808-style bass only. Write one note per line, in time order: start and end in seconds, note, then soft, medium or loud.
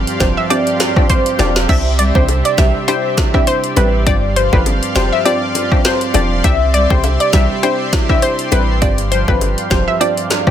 0.21 0.36 F1 medium
1.39 1.67 E1 loud
1.69 2.12 C2 loud
2.15 2.43 C2 loud
2.58 2.74 B1 loud
3.77 4.08 A1 loud
4.07 4.49 G1 loud
4.53 4.80 G1 loud
4.96 5.11 F1 medium
6.15 6.42 E1 loud
6.44 6.87 C2 loud
6.90 7.18 C2 loud
7.33 7.49 B1 loud
8.52 8.83 A1 loud
8.82 9.25 G1 loud
9.28 9.55 G1 loud
9.71 9.86 F1 medium